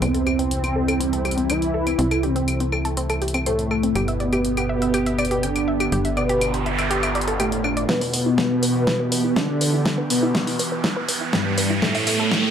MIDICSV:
0, 0, Header, 1, 10, 480
1, 0, Start_track
1, 0, Tempo, 491803
1, 20, Time_signature, 4, 2, 24, 8
1, 12206, End_track
2, 0, Start_track
2, 0, Title_t, "Synth arpeggio sound"
2, 0, Program_c, 0, 84
2, 18, Note_on_c, 0, 60, 98
2, 101, Note_off_c, 0, 60, 0
2, 141, Note_on_c, 0, 69, 75
2, 221, Note_off_c, 0, 69, 0
2, 259, Note_on_c, 0, 67, 69
2, 309, Note_off_c, 0, 67, 0
2, 381, Note_on_c, 0, 60, 95
2, 461, Note_off_c, 0, 60, 0
2, 621, Note_on_c, 0, 60, 70
2, 701, Note_off_c, 0, 60, 0
2, 740, Note_on_c, 0, 69, 70
2, 849, Note_off_c, 0, 69, 0
2, 861, Note_on_c, 0, 69, 72
2, 974, Note_off_c, 0, 69, 0
2, 979, Note_on_c, 0, 60, 94
2, 1062, Note_off_c, 0, 60, 0
2, 1101, Note_on_c, 0, 69, 73
2, 1181, Note_off_c, 0, 69, 0
2, 1219, Note_on_c, 0, 67, 69
2, 1269, Note_off_c, 0, 67, 0
2, 1341, Note_on_c, 0, 60, 72
2, 1453, Note_off_c, 0, 60, 0
2, 1459, Note_on_c, 0, 72, 75
2, 1509, Note_off_c, 0, 72, 0
2, 1699, Note_on_c, 0, 69, 73
2, 1816, Note_off_c, 0, 69, 0
2, 1820, Note_on_c, 0, 60, 71
2, 1869, Note_off_c, 0, 60, 0
2, 1938, Note_on_c, 0, 60, 96
2, 2021, Note_off_c, 0, 60, 0
2, 2061, Note_on_c, 0, 69, 75
2, 2141, Note_off_c, 0, 69, 0
2, 2179, Note_on_c, 0, 67, 67
2, 2229, Note_off_c, 0, 67, 0
2, 2301, Note_on_c, 0, 60, 94
2, 2381, Note_off_c, 0, 60, 0
2, 2542, Note_on_c, 0, 60, 72
2, 2621, Note_off_c, 0, 60, 0
2, 2659, Note_on_c, 0, 69, 70
2, 2770, Note_off_c, 0, 69, 0
2, 2782, Note_on_c, 0, 69, 72
2, 2894, Note_off_c, 0, 69, 0
2, 2900, Note_on_c, 0, 60, 96
2, 2982, Note_off_c, 0, 60, 0
2, 3022, Note_on_c, 0, 69, 72
2, 3101, Note_off_c, 0, 69, 0
2, 3140, Note_on_c, 0, 67, 71
2, 3189, Note_off_c, 0, 67, 0
2, 3262, Note_on_c, 0, 60, 76
2, 3374, Note_off_c, 0, 60, 0
2, 3381, Note_on_c, 0, 72, 78
2, 3430, Note_off_c, 0, 72, 0
2, 3620, Note_on_c, 0, 69, 73
2, 3736, Note_off_c, 0, 69, 0
2, 3741, Note_on_c, 0, 60, 71
2, 3789, Note_off_c, 0, 60, 0
2, 3860, Note_on_c, 0, 67, 99
2, 3942, Note_off_c, 0, 67, 0
2, 3983, Note_on_c, 0, 76, 75
2, 4062, Note_off_c, 0, 76, 0
2, 4100, Note_on_c, 0, 74, 69
2, 4149, Note_off_c, 0, 74, 0
2, 4223, Note_on_c, 0, 67, 94
2, 4302, Note_off_c, 0, 67, 0
2, 4464, Note_on_c, 0, 67, 71
2, 4542, Note_off_c, 0, 67, 0
2, 4580, Note_on_c, 0, 76, 71
2, 4691, Note_off_c, 0, 76, 0
2, 4703, Note_on_c, 0, 76, 74
2, 4815, Note_off_c, 0, 76, 0
2, 4820, Note_on_c, 0, 67, 96
2, 4902, Note_off_c, 0, 67, 0
2, 4943, Note_on_c, 0, 76, 72
2, 5022, Note_off_c, 0, 76, 0
2, 5061, Note_on_c, 0, 74, 71
2, 5110, Note_off_c, 0, 74, 0
2, 5183, Note_on_c, 0, 67, 74
2, 5294, Note_off_c, 0, 67, 0
2, 5300, Note_on_c, 0, 79, 79
2, 5349, Note_off_c, 0, 79, 0
2, 5541, Note_on_c, 0, 76, 72
2, 5656, Note_off_c, 0, 76, 0
2, 5663, Note_on_c, 0, 67, 73
2, 5710, Note_off_c, 0, 67, 0
2, 5781, Note_on_c, 0, 67, 97
2, 5863, Note_off_c, 0, 67, 0
2, 5903, Note_on_c, 0, 76, 75
2, 5982, Note_off_c, 0, 76, 0
2, 6021, Note_on_c, 0, 74, 71
2, 6070, Note_off_c, 0, 74, 0
2, 6143, Note_on_c, 0, 67, 98
2, 6222, Note_off_c, 0, 67, 0
2, 6383, Note_on_c, 0, 67, 71
2, 6462, Note_off_c, 0, 67, 0
2, 6501, Note_on_c, 0, 76, 69
2, 6611, Note_off_c, 0, 76, 0
2, 6623, Note_on_c, 0, 76, 73
2, 6735, Note_off_c, 0, 76, 0
2, 6740, Note_on_c, 0, 67, 98
2, 6822, Note_off_c, 0, 67, 0
2, 6862, Note_on_c, 0, 76, 73
2, 6942, Note_off_c, 0, 76, 0
2, 6981, Note_on_c, 0, 74, 73
2, 7063, Note_off_c, 0, 74, 0
2, 7103, Note_on_c, 0, 69, 75
2, 7215, Note_off_c, 0, 69, 0
2, 7220, Note_on_c, 0, 67, 80
2, 7302, Note_off_c, 0, 67, 0
2, 7460, Note_on_c, 0, 62, 72
2, 7576, Note_off_c, 0, 62, 0
2, 7582, Note_on_c, 0, 74, 72
2, 7661, Note_off_c, 0, 74, 0
2, 7700, Note_on_c, 0, 64, 99
2, 7782, Note_off_c, 0, 64, 0
2, 7823, Note_on_c, 0, 71, 78
2, 7902, Note_off_c, 0, 71, 0
2, 7941, Note_on_c, 0, 71, 70
2, 7990, Note_off_c, 0, 71, 0
2, 8064, Note_on_c, 0, 64, 96
2, 8142, Note_off_c, 0, 64, 0
2, 8303, Note_on_c, 0, 64, 72
2, 8382, Note_off_c, 0, 64, 0
2, 8420, Note_on_c, 0, 71, 74
2, 8532, Note_off_c, 0, 71, 0
2, 8544, Note_on_c, 0, 71, 73
2, 8655, Note_off_c, 0, 71, 0
2, 8662, Note_on_c, 0, 64, 101
2, 8743, Note_off_c, 0, 64, 0
2, 8783, Note_on_c, 0, 71, 72
2, 8862, Note_off_c, 0, 71, 0
2, 8900, Note_on_c, 0, 71, 72
2, 8949, Note_off_c, 0, 71, 0
2, 9023, Note_on_c, 0, 64, 75
2, 9135, Note_off_c, 0, 64, 0
2, 9140, Note_on_c, 0, 76, 78
2, 9189, Note_off_c, 0, 76, 0
2, 9380, Note_on_c, 0, 71, 73
2, 9496, Note_off_c, 0, 71, 0
2, 9502, Note_on_c, 0, 64, 75
2, 9550, Note_off_c, 0, 64, 0
2, 9620, Note_on_c, 0, 64, 100
2, 9702, Note_off_c, 0, 64, 0
2, 9741, Note_on_c, 0, 71, 75
2, 9821, Note_off_c, 0, 71, 0
2, 9860, Note_on_c, 0, 71, 72
2, 9909, Note_off_c, 0, 71, 0
2, 9982, Note_on_c, 0, 64, 98
2, 10061, Note_off_c, 0, 64, 0
2, 10222, Note_on_c, 0, 64, 74
2, 10301, Note_off_c, 0, 64, 0
2, 10340, Note_on_c, 0, 71, 73
2, 10450, Note_off_c, 0, 71, 0
2, 10462, Note_on_c, 0, 71, 73
2, 10574, Note_off_c, 0, 71, 0
2, 10580, Note_on_c, 0, 64, 100
2, 10662, Note_off_c, 0, 64, 0
2, 10701, Note_on_c, 0, 71, 77
2, 10781, Note_off_c, 0, 71, 0
2, 10819, Note_on_c, 0, 71, 72
2, 10869, Note_off_c, 0, 71, 0
2, 10941, Note_on_c, 0, 64, 77
2, 11054, Note_off_c, 0, 64, 0
2, 11060, Note_on_c, 0, 76, 82
2, 11109, Note_off_c, 0, 76, 0
2, 11300, Note_on_c, 0, 71, 74
2, 11416, Note_off_c, 0, 71, 0
2, 11422, Note_on_c, 0, 64, 77
2, 11470, Note_off_c, 0, 64, 0
2, 11540, Note_on_c, 0, 69, 99
2, 11622, Note_off_c, 0, 69, 0
2, 11662, Note_on_c, 0, 76, 75
2, 11741, Note_off_c, 0, 76, 0
2, 11780, Note_on_c, 0, 76, 73
2, 11829, Note_off_c, 0, 76, 0
2, 11903, Note_on_c, 0, 69, 100
2, 11982, Note_off_c, 0, 69, 0
2, 12142, Note_on_c, 0, 69, 75
2, 12206, Note_off_c, 0, 69, 0
2, 12206, End_track
3, 0, Start_track
3, 0, Title_t, "Ambient pad"
3, 0, Program_c, 1, 92
3, 0, Note_on_c, 1, 64, 83
3, 21, Note_on_c, 1, 55, 70
3, 1921, Note_off_c, 1, 55, 0
3, 1942, Note_on_c, 1, 57, 72
3, 3822, Note_off_c, 1, 64, 0
3, 3842, Note_off_c, 1, 57, 0
3, 3859, Note_on_c, 1, 50, 77
3, 3859, Note_on_c, 1, 67, 86
3, 3860, Note_on_c, 1, 59, 71
3, 5760, Note_off_c, 1, 67, 0
3, 5781, Note_on_c, 1, 65, 88
3, 7661, Note_off_c, 1, 50, 0
3, 7662, Note_off_c, 1, 59, 0
3, 7682, Note_off_c, 1, 65, 0
3, 7700, Note_on_c, 1, 52, 80
3, 7701, Note_on_c, 1, 59, 72
3, 7701, Note_on_c, 1, 67, 89
3, 11501, Note_off_c, 1, 52, 0
3, 11502, Note_off_c, 1, 59, 0
3, 11502, Note_off_c, 1, 67, 0
3, 11540, Note_on_c, 1, 48, 80
3, 11540, Note_on_c, 1, 57, 72
3, 11540, Note_on_c, 1, 64, 85
3, 12206, Note_off_c, 1, 48, 0
3, 12206, Note_off_c, 1, 57, 0
3, 12206, Note_off_c, 1, 64, 0
3, 12206, End_track
4, 0, Start_track
4, 0, Title_t, "Analog synth lead"
4, 0, Program_c, 2, 81
4, 20, Note_on_c, 2, 60, 109
4, 1460, Note_on_c, 2, 64, 99
4, 1475, Note_off_c, 2, 60, 0
4, 2181, Note_on_c, 2, 60, 86
4, 2195, Note_off_c, 2, 64, 0
4, 2623, Note_off_c, 2, 60, 0
4, 3379, Note_on_c, 2, 57, 88
4, 3861, Note_on_c, 2, 59, 109
4, 3876, Note_off_c, 2, 57, 0
4, 5301, Note_on_c, 2, 62, 96
4, 5315, Note_off_c, 2, 59, 0
4, 5926, Note_off_c, 2, 62, 0
4, 6019, Note_on_c, 2, 59, 89
4, 6462, Note_off_c, 2, 59, 0
4, 7219, Note_on_c, 2, 57, 88
4, 7662, Note_off_c, 2, 57, 0
4, 7699, Note_on_c, 2, 59, 109
4, 9139, Note_on_c, 2, 62, 98
4, 9154, Note_off_c, 2, 59, 0
4, 9765, Note_off_c, 2, 62, 0
4, 9859, Note_on_c, 2, 59, 91
4, 10302, Note_off_c, 2, 59, 0
4, 11060, Note_on_c, 2, 55, 90
4, 11502, Note_off_c, 2, 55, 0
4, 11540, Note_on_c, 2, 57, 108
4, 12206, Note_off_c, 2, 57, 0
4, 12206, End_track
5, 0, Start_track
5, 0, Title_t, "Supersaw synth"
5, 0, Program_c, 3, 81
5, 7699, Note_on_c, 3, 47, 107
5, 9140, Note_off_c, 3, 47, 0
5, 9141, Note_on_c, 3, 50, 96
5, 9766, Note_off_c, 3, 50, 0
5, 9860, Note_on_c, 3, 47, 91
5, 10302, Note_off_c, 3, 47, 0
5, 11062, Note_on_c, 3, 43, 93
5, 11503, Note_off_c, 3, 43, 0
5, 11541, Note_on_c, 3, 45, 112
5, 12206, Note_off_c, 3, 45, 0
5, 12206, End_track
6, 0, Start_track
6, 0, Title_t, "Synth drone"
6, 0, Program_c, 4, 95
6, 0, Note_on_c, 4, 40, 74
6, 7748, Note_off_c, 4, 40, 0
6, 12206, End_track
7, 0, Start_track
7, 0, Title_t, "Analog synth bass"
7, 0, Program_c, 5, 38
7, 20, Note_on_c, 5, 36, 82
7, 1916, Note_off_c, 5, 36, 0
7, 1940, Note_on_c, 5, 36, 82
7, 3837, Note_off_c, 5, 36, 0
7, 3860, Note_on_c, 5, 31, 84
7, 5756, Note_off_c, 5, 31, 0
7, 5780, Note_on_c, 5, 31, 82
7, 7677, Note_off_c, 5, 31, 0
7, 12206, End_track
8, 0, Start_track
8, 0, Title_t, "Noise sweep"
8, 0, Program_c, 6, 103
8, 5781, Note_on_c, 6, 60, 70
8, 7700, Note_off_c, 6, 60, 0
8, 12206, End_track
9, 0, Start_track
9, 0, Title_t, "Riser"
9, 0, Program_c, 7, 103
9, 7700, Note_on_c, 7, 60, 74
9, 12206, Note_off_c, 7, 60, 0
9, 12206, End_track
10, 0, Start_track
10, 0, Title_t, "Drums"
10, 19, Note_on_c, 9, 42, 56
10, 19, Note_on_c, 9, 75, 45
10, 117, Note_off_c, 9, 42, 0
10, 117, Note_off_c, 9, 75, 0
10, 142, Note_on_c, 9, 42, 37
10, 239, Note_off_c, 9, 42, 0
10, 260, Note_on_c, 9, 42, 26
10, 260, Note_on_c, 9, 75, 70
10, 357, Note_off_c, 9, 42, 0
10, 357, Note_off_c, 9, 75, 0
10, 382, Note_on_c, 9, 42, 38
10, 480, Note_off_c, 9, 42, 0
10, 500, Note_on_c, 9, 42, 58
10, 598, Note_off_c, 9, 42, 0
10, 623, Note_on_c, 9, 42, 36
10, 623, Note_on_c, 9, 75, 48
10, 720, Note_off_c, 9, 42, 0
10, 720, Note_off_c, 9, 75, 0
10, 863, Note_on_c, 9, 42, 38
10, 863, Note_on_c, 9, 75, 70
10, 960, Note_off_c, 9, 42, 0
10, 960, Note_off_c, 9, 75, 0
10, 981, Note_on_c, 9, 42, 57
10, 1079, Note_off_c, 9, 42, 0
10, 1103, Note_on_c, 9, 42, 39
10, 1201, Note_off_c, 9, 42, 0
10, 1220, Note_on_c, 9, 42, 35
10, 1220, Note_on_c, 9, 75, 48
10, 1282, Note_off_c, 9, 42, 0
10, 1282, Note_on_c, 9, 42, 47
10, 1318, Note_off_c, 9, 75, 0
10, 1343, Note_off_c, 9, 42, 0
10, 1343, Note_on_c, 9, 42, 38
10, 1441, Note_off_c, 9, 42, 0
10, 1461, Note_on_c, 9, 42, 59
10, 1461, Note_on_c, 9, 75, 73
10, 1558, Note_off_c, 9, 42, 0
10, 1558, Note_off_c, 9, 75, 0
10, 1583, Note_on_c, 9, 42, 38
10, 1680, Note_off_c, 9, 42, 0
10, 1822, Note_on_c, 9, 42, 38
10, 1822, Note_on_c, 9, 75, 48
10, 1920, Note_off_c, 9, 42, 0
10, 1920, Note_off_c, 9, 75, 0
10, 1940, Note_on_c, 9, 42, 55
10, 2038, Note_off_c, 9, 42, 0
10, 2062, Note_on_c, 9, 42, 39
10, 2062, Note_on_c, 9, 75, 75
10, 2160, Note_off_c, 9, 42, 0
10, 2160, Note_off_c, 9, 75, 0
10, 2179, Note_on_c, 9, 42, 27
10, 2277, Note_off_c, 9, 42, 0
10, 2302, Note_on_c, 9, 42, 39
10, 2399, Note_off_c, 9, 42, 0
10, 2419, Note_on_c, 9, 42, 57
10, 2419, Note_on_c, 9, 75, 49
10, 2516, Note_off_c, 9, 42, 0
10, 2516, Note_off_c, 9, 75, 0
10, 2540, Note_on_c, 9, 42, 37
10, 2638, Note_off_c, 9, 42, 0
10, 2659, Note_on_c, 9, 75, 73
10, 2756, Note_off_c, 9, 75, 0
10, 2782, Note_on_c, 9, 42, 38
10, 2879, Note_off_c, 9, 42, 0
10, 2900, Note_on_c, 9, 42, 57
10, 2997, Note_off_c, 9, 42, 0
10, 3022, Note_on_c, 9, 42, 38
10, 3022, Note_on_c, 9, 75, 49
10, 3119, Note_off_c, 9, 42, 0
10, 3119, Note_off_c, 9, 75, 0
10, 3139, Note_on_c, 9, 42, 36
10, 3201, Note_off_c, 9, 42, 0
10, 3201, Note_on_c, 9, 42, 48
10, 3262, Note_off_c, 9, 42, 0
10, 3262, Note_on_c, 9, 42, 38
10, 3262, Note_on_c, 9, 75, 72
10, 3360, Note_off_c, 9, 42, 0
10, 3360, Note_off_c, 9, 75, 0
10, 3380, Note_on_c, 9, 42, 58
10, 3478, Note_off_c, 9, 42, 0
10, 3502, Note_on_c, 9, 42, 37
10, 3600, Note_off_c, 9, 42, 0
10, 3620, Note_on_c, 9, 75, 49
10, 3718, Note_off_c, 9, 75, 0
10, 3742, Note_on_c, 9, 42, 39
10, 3840, Note_off_c, 9, 42, 0
10, 3860, Note_on_c, 9, 42, 59
10, 3860, Note_on_c, 9, 75, 75
10, 3957, Note_off_c, 9, 42, 0
10, 3957, Note_off_c, 9, 75, 0
10, 3982, Note_on_c, 9, 42, 41
10, 4080, Note_off_c, 9, 42, 0
10, 4101, Note_on_c, 9, 42, 28
10, 4198, Note_off_c, 9, 42, 0
10, 4222, Note_on_c, 9, 42, 41
10, 4222, Note_on_c, 9, 75, 52
10, 4320, Note_off_c, 9, 42, 0
10, 4320, Note_off_c, 9, 75, 0
10, 4339, Note_on_c, 9, 42, 56
10, 4437, Note_off_c, 9, 42, 0
10, 4462, Note_on_c, 9, 42, 41
10, 4462, Note_on_c, 9, 75, 73
10, 4560, Note_off_c, 9, 42, 0
10, 4560, Note_off_c, 9, 75, 0
10, 4703, Note_on_c, 9, 42, 39
10, 4800, Note_off_c, 9, 42, 0
10, 4820, Note_on_c, 9, 42, 58
10, 4820, Note_on_c, 9, 75, 51
10, 4918, Note_off_c, 9, 42, 0
10, 4918, Note_off_c, 9, 75, 0
10, 4943, Note_on_c, 9, 42, 40
10, 5040, Note_off_c, 9, 42, 0
10, 5061, Note_on_c, 9, 42, 37
10, 5061, Note_on_c, 9, 75, 78
10, 5122, Note_off_c, 9, 42, 0
10, 5122, Note_on_c, 9, 42, 49
10, 5158, Note_off_c, 9, 75, 0
10, 5183, Note_off_c, 9, 42, 0
10, 5183, Note_on_c, 9, 42, 38
10, 5281, Note_off_c, 9, 42, 0
10, 5301, Note_on_c, 9, 42, 61
10, 5399, Note_off_c, 9, 42, 0
10, 5423, Note_on_c, 9, 42, 39
10, 5423, Note_on_c, 9, 75, 51
10, 5521, Note_off_c, 9, 42, 0
10, 5521, Note_off_c, 9, 75, 0
10, 5664, Note_on_c, 9, 42, 39
10, 5664, Note_on_c, 9, 75, 78
10, 5761, Note_off_c, 9, 42, 0
10, 5761, Note_off_c, 9, 75, 0
10, 5781, Note_on_c, 9, 42, 61
10, 5878, Note_off_c, 9, 42, 0
10, 5902, Note_on_c, 9, 42, 43
10, 6000, Note_off_c, 9, 42, 0
10, 6022, Note_on_c, 9, 42, 29
10, 6022, Note_on_c, 9, 75, 51
10, 6119, Note_off_c, 9, 42, 0
10, 6119, Note_off_c, 9, 75, 0
10, 6143, Note_on_c, 9, 42, 42
10, 6240, Note_off_c, 9, 42, 0
10, 6260, Note_on_c, 9, 42, 60
10, 6260, Note_on_c, 9, 75, 73
10, 6358, Note_off_c, 9, 42, 0
10, 6358, Note_off_c, 9, 75, 0
10, 6382, Note_on_c, 9, 42, 41
10, 6480, Note_off_c, 9, 42, 0
10, 6501, Note_on_c, 9, 42, 28
10, 6599, Note_off_c, 9, 42, 0
10, 6623, Note_on_c, 9, 42, 41
10, 6623, Note_on_c, 9, 75, 50
10, 6720, Note_off_c, 9, 42, 0
10, 6720, Note_off_c, 9, 75, 0
10, 6741, Note_on_c, 9, 42, 59
10, 6838, Note_off_c, 9, 42, 0
10, 6862, Note_on_c, 9, 42, 43
10, 6862, Note_on_c, 9, 75, 74
10, 6959, Note_off_c, 9, 42, 0
10, 6959, Note_off_c, 9, 75, 0
10, 6979, Note_on_c, 9, 42, 37
10, 7041, Note_off_c, 9, 42, 0
10, 7041, Note_on_c, 9, 42, 51
10, 7101, Note_off_c, 9, 42, 0
10, 7101, Note_on_c, 9, 42, 40
10, 7199, Note_off_c, 9, 42, 0
10, 7220, Note_on_c, 9, 42, 63
10, 7220, Note_on_c, 9, 75, 50
10, 7317, Note_off_c, 9, 42, 0
10, 7317, Note_off_c, 9, 75, 0
10, 7341, Note_on_c, 9, 42, 42
10, 7439, Note_off_c, 9, 42, 0
10, 7459, Note_on_c, 9, 75, 73
10, 7557, Note_off_c, 9, 75, 0
10, 7582, Note_on_c, 9, 42, 43
10, 7680, Note_off_c, 9, 42, 0
10, 7698, Note_on_c, 9, 36, 106
10, 7700, Note_on_c, 9, 38, 45
10, 7796, Note_off_c, 9, 36, 0
10, 7798, Note_off_c, 9, 38, 0
10, 7822, Note_on_c, 9, 46, 59
10, 7919, Note_off_c, 9, 46, 0
10, 7940, Note_on_c, 9, 46, 97
10, 8038, Note_off_c, 9, 46, 0
10, 8178, Note_on_c, 9, 36, 111
10, 8179, Note_on_c, 9, 38, 45
10, 8276, Note_off_c, 9, 36, 0
10, 8277, Note_off_c, 9, 38, 0
10, 8420, Note_on_c, 9, 46, 98
10, 8518, Note_off_c, 9, 46, 0
10, 8658, Note_on_c, 9, 36, 109
10, 8660, Note_on_c, 9, 38, 46
10, 8756, Note_off_c, 9, 36, 0
10, 8758, Note_off_c, 9, 38, 0
10, 8900, Note_on_c, 9, 46, 99
10, 8998, Note_off_c, 9, 46, 0
10, 9138, Note_on_c, 9, 36, 112
10, 9140, Note_on_c, 9, 38, 49
10, 9236, Note_off_c, 9, 36, 0
10, 9238, Note_off_c, 9, 38, 0
10, 9379, Note_on_c, 9, 46, 99
10, 9477, Note_off_c, 9, 46, 0
10, 9618, Note_on_c, 9, 36, 112
10, 9620, Note_on_c, 9, 38, 51
10, 9716, Note_off_c, 9, 36, 0
10, 9717, Note_off_c, 9, 38, 0
10, 9860, Note_on_c, 9, 46, 102
10, 9958, Note_off_c, 9, 46, 0
10, 10098, Note_on_c, 9, 36, 109
10, 10100, Note_on_c, 9, 38, 51
10, 10196, Note_off_c, 9, 36, 0
10, 10198, Note_off_c, 9, 38, 0
10, 10222, Note_on_c, 9, 46, 59
10, 10320, Note_off_c, 9, 46, 0
10, 10340, Note_on_c, 9, 46, 98
10, 10437, Note_off_c, 9, 46, 0
10, 10578, Note_on_c, 9, 36, 114
10, 10580, Note_on_c, 9, 38, 52
10, 10676, Note_off_c, 9, 36, 0
10, 10677, Note_off_c, 9, 38, 0
10, 10819, Note_on_c, 9, 46, 105
10, 10917, Note_off_c, 9, 46, 0
10, 11058, Note_on_c, 9, 36, 121
10, 11060, Note_on_c, 9, 38, 54
10, 11156, Note_off_c, 9, 36, 0
10, 11157, Note_off_c, 9, 38, 0
10, 11298, Note_on_c, 9, 46, 105
10, 11396, Note_off_c, 9, 46, 0
10, 11539, Note_on_c, 9, 36, 115
10, 11539, Note_on_c, 9, 38, 57
10, 11636, Note_off_c, 9, 36, 0
10, 11636, Note_off_c, 9, 38, 0
10, 11661, Note_on_c, 9, 46, 60
10, 11759, Note_off_c, 9, 46, 0
10, 11779, Note_on_c, 9, 46, 103
10, 11877, Note_off_c, 9, 46, 0
10, 12019, Note_on_c, 9, 36, 117
10, 12020, Note_on_c, 9, 38, 56
10, 12116, Note_off_c, 9, 36, 0
10, 12118, Note_off_c, 9, 38, 0
10, 12206, End_track
0, 0, End_of_file